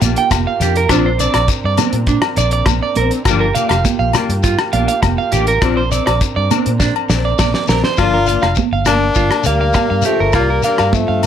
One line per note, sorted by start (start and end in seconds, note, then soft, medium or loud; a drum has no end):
0.00 0.14 A#1 medium
0.00 0.88 A#3 medium
0.00 0.20 D4 medium
0.00 0.87 F4 medium
0.00 0.88 G4 medium
0.00 muted clean electric guitar stroke medium
0.00 closed hi-hat soft
0.00 muted conga soft
0.00 high conga medium
0.00 shekere loud
0.04 0.21 A#3 soft
0.16 0.31 G5 medium
0.16 closed hi-hat medium
0.31 0.44 F1 medium
0.31 muted clean electric guitar stroke medium
0.31 kick medium
0.31 cross-stick medium
0.31 closed hi-hat medium
0.31 high conga medium
0.31 low agogo medium
0.31 shekere medium
0.47 0.60 F5 medium
0.60 0.85 F2 medium
0.60 0.79 A#3 soft
0.60 0.78 D4 medium
0.60 0.75 G4 medium
0.60 closed hi-hat soft
0.60 shekere medium
0.76 0.90 A#4 medium
0.76 closed hi-hat soft
0.89 1.27 A#1 medium
0.89 1.07 F3 medium
0.89 1.08 C4 medium
0.89 3.23 C4 medium
0.89 3.23 D4 medium
0.89 1.04 D4 medium
0.89 1.08 D4 medium
0.89 3.23 A#4 medium
0.89 kick medium
0.89 cross-stick medium
0.89 closed hi-hat medium
0.89 muted conga soft
0.89 low agogo medium
0.89 shekere medium
1.06 1.19 C5 medium
1.18 1.38 C4 medium
1.18 1.37 D4 medium
1.18 1.34 D5 medium
1.18 closed hi-hat soft
1.18 shekere medium
1.34 1.47 A#1 medium
1.34 1.48 D5 medium
1.34 cross-stick medium
1.34 closed hi-hat soft
1.34 low agogo medium
1.34 shekere soft
1.48 kick medium
1.48 closed hi-hat soft
1.48 shekere medium
1.64 1.76 G2 medium
1.64 1.78 D5 medium
1.77 1.97 C4 soft
1.77 1.96 D4 medium
1.77 closed hi-hat soft
1.77 muted conga soft
1.77 high conga medium
1.77 low conga medium
1.77 low agogo medium
1.77 shekere medium
1.93 2.18 A#2 medium
1.93 closed hi-hat soft
2.07 2.22 D4 medium
2.07 kick medium
2.07 closed hi-hat soft
2.07 muted conga soft
2.07 shekere medium
2.22 cross-stick medium
2.22 low agogo medium
2.36 2.62 A#1 medium
2.36 2.55 D4 medium
2.36 2.52 D5 medium
2.36 muted clean electric guitar stroke soft
2.36 closed hi-hat soft
2.36 muted conga soft
2.36 shekere loud
2.51 2.66 D5 medium
2.51 closed hi-hat soft
2.66 2.79 A#1 medium
2.66 kick medium
2.66 cross-stick medium
2.66 closed hi-hat soft
2.66 high conga medium
2.66 low agogo medium
2.66 shekere medium
2.83 2.96 D5 medium
2.95 3.09 A#1 medium
2.95 3.15 C4 medium
2.95 3.11 A#4 medium
2.95 muted clean electric guitar stroke medium
2.95 closed hi-hat soft
2.95 high conga medium
3.11 closed hi-hat soft
3.11 shekere soft
3.25 3.50 G1 loud
3.25 3.44 F3 medium
3.25 5.59 A#3 medium
3.25 3.45 A#3 medium
3.25 3.45 D4 medium
3.25 5.60 F4 medium
3.25 5.59 G4 medium
3.25 muted clean electric guitar stroke medium
3.25 kick loud
3.25 cross-stick medium
3.25 closed hi-hat medium
3.25 muted conga soft
3.25 low agogo medium
3.25 shekere medium
3.40 3.54 A#4 medium
3.55 3.74 A#3 soft
3.55 3.73 D4 medium
3.55 3.68 F5 medium
3.55 closed hi-hat medium
3.55 shekere medium
3.69 3.82 F1 medium
3.69 3.83 F5 medium
3.69 cross-stick medium
3.69 closed hi-hat soft
3.69 low agogo medium
3.69 shekere soft
3.85 kick medium
3.85 closed hi-hat soft
3.85 high conga medium
3.85 shekere medium
3.99 4.12 A#1 medium
3.99 4.13 F5 medium
4.13 4.33 A#3 medium
4.13 4.32 D4 medium
4.13 cross-stick medium
4.13 closed hi-hat medium
4.13 muted conga soft
4.13 low agogo medium
4.13 shekere medium
4.29 4.54 G2 medium
4.29 closed hi-hat medium
4.43 4.58 F4 medium
4.43 kick medium
4.43 closed hi-hat medium
4.43 muted conga soft
4.43 shekere medium
4.59 cross-stick medium
4.59 low agogo medium
4.73 4.86 A#1 medium
4.73 4.92 A#3 soft
4.73 4.91 D4 medium
4.73 4.87 F5 medium
4.73 closed hi-hat medium
4.73 muted conga soft
4.73 high conga medium
4.88 5.01 F5 medium
4.88 closed hi-hat medium
5.02 5.15 F1 loud
5.02 muted clean electric guitar stroke medium
5.02 kick medium
5.02 cross-stick medium
5.02 closed hi-hat medium
5.02 high conga medium
5.02 low agogo medium
5.02 shekere medium
5.18 5.31 F5 medium
5.32 5.57 A1 medium
5.32 5.52 A#3 soft
5.32 5.50 D4 medium
5.32 5.46 G4 medium
5.32 closed hi-hat medium
5.32 shekere medium
5.47 5.61 A#4 loud
5.47 closed hi-hat soft
5.47 shekere soft
5.62 5.99 A#1 loud
5.62 5.79 F3 medium
5.62 7.96 C4 medium
5.62 5.80 C4 medium
5.62 7.96 D4 medium
5.62 5.80 D4 medium
5.62 7.96 A#4 medium
5.62 muted clean electric guitar stroke medium
5.62 kick loud
5.62 cross-stick medium
5.62 closed hi-hat medium
5.62 muted conga soft
5.62 low agogo medium
5.62 shekere medium
5.77 5.90 C5 medium
5.91 6.10 C4 medium
5.91 6.05 D5 medium
5.91 muted clean electric guitar stroke medium
5.91 closed hi-hat soft
5.91 shekere medium
6.06 6.19 A#1 medium
6.06 6.19 D5 medium
6.06 cross-stick medium
6.06 closed hi-hat soft
6.06 low agogo medium
6.21 kick medium
6.21 closed hi-hat soft
6.21 shekere medium
6.36 6.48 G2 medium
6.36 6.49 D5 medium
6.51 6.70 C4 medium
6.51 6.68 D4 medium
6.51 closed hi-hat soft
6.51 muted conga soft
6.51 high conga medium
6.51 low agogo medium
6.51 shekere medium
6.66 6.91 A#2 medium
6.66 closed hi-hat soft
6.80 6.94 D4 medium
6.80 kick medium
6.80 snare soft
6.80 muted conga soft
6.80 shekere medium
6.96 low agogo medium
7.09 7.34 A#1 loud
7.09 7.28 C4 soft
7.09 7.27 D4 medium
7.09 muted clean electric guitar stroke medium
7.09 snare medium
7.09 muted conga soft
7.09 shekere medium
7.25 7.38 D5 medium
7.39 7.52 A#1 medium
7.39 7.53 D5 medium
7.39 kick medium
7.39 snare medium
7.39 high conga medium
7.39 low agogo medium
7.39 shekere medium
7.54 7.68 D5 medium
7.54 snare medium
7.67 7.81 A#1 medium
7.67 7.87 C4 soft
7.67 7.86 D4 medium
7.67 7.82 A#4 medium
7.67 snare medium
7.67 shekere medium
7.84 7.97 C5 medium
7.84 snare medium
7.97 8.36 G1 medium
7.97 8.16 F3 medium
7.97 8.16 A#3 medium
7.97 8.17 D4 medium
7.97 8.54 D4 medium
7.97 8.53 F4 medium
7.97 8.12 F4 medium
7.97 kick medium
7.97 cross-stick medium
7.97 muted conga soft
7.97 low agogo medium
7.97 shekere medium
8.14 8.27 A#4 medium
8.26 8.46 A#3 soft
8.26 8.45 D4 soft
8.26 8.41 F5 medium
8.26 closed hi-hat soft
8.26 shekere medium
8.41 8.55 F1 medium
8.41 8.56 F5 medium
8.41 cross-stick medium
8.41 low agogo medium
8.41 shekere soft
8.55 kick medium
8.55 high conga medium
8.55 shekere medium
8.72 9.09 G1 medium
8.72 8.86 F5 medium
8.85 9.49 A#3 medium
8.85 9.05 A#3 soft
8.85 9.47 D4 medium
8.85 9.04 D4 soft
8.85 cross-stick medium
8.85 closed hi-hat soft
8.85 muted conga soft
8.85 high conga medium
8.85 low agogo medium
8.85 shekere medium
9.14 9.28 G1 medium
9.14 9.30 F4 medium
9.14 kick medium
9.14 muted conga soft
9.14 shekere medium
9.31 cross-stick medium
9.31 low agogo medium
9.43 9.71 D2 medium
9.43 10.05 A#3 medium
9.43 9.64 D4 soft
9.43 9.60 F5 medium
9.43 closed hi-hat soft
9.43 muted conga soft
9.43 shekere medium
9.48 10.05 G3 medium
9.48 9.65 A#3 soft
9.61 9.74 F5 medium
9.73 9.89 F5 medium
9.73 kick medium
9.73 cross-stick medium
9.73 high conga medium
9.73 low agogo medium
9.73 shekere medium
9.90 10.03 G2 medium
9.90 10.04 F5 medium
10.02 10.33 F3 medium
10.02 10.33 A3 medium
10.02 10.23 D4 soft
10.02 10.19 G4 medium
10.02 closed hi-hat soft
10.02 shekere medium
10.07 10.24 A#3 soft
10.20 10.32 G1 medium
10.20 10.33 A#4 medium
10.32 10.59 C2 medium
10.32 10.63 G3 medium
10.32 10.62 A#3 medium
10.32 10.49 F4 medium
10.32 kick medium
10.32 cross-stick medium
10.32 muted conga soft
10.32 low agogo medium
10.32 shekere medium
10.50 10.63 A#4 medium
10.62 10.95 G3 medium
10.62 10.95 A#3 medium
10.62 10.82 D4 medium
10.62 10.78 F5 medium
10.62 closed hi-hat soft
10.62 shekere medium
10.67 10.84 A#3 soft
10.78 11.04 G2 medium
10.78 10.93 F5 medium
10.78 cross-stick medium
10.78 low agogo medium
10.78 shekere soft
10.93 11.26 F3 medium
10.93 11.26 A3 medium
10.93 kick medium
10.93 high conga medium
10.93 shekere medium
11.08 11.26 G2 medium
11.08 11.22 F5 medium
11.23 closed hi-hat soft
11.23 high conga medium
11.23 low agogo medium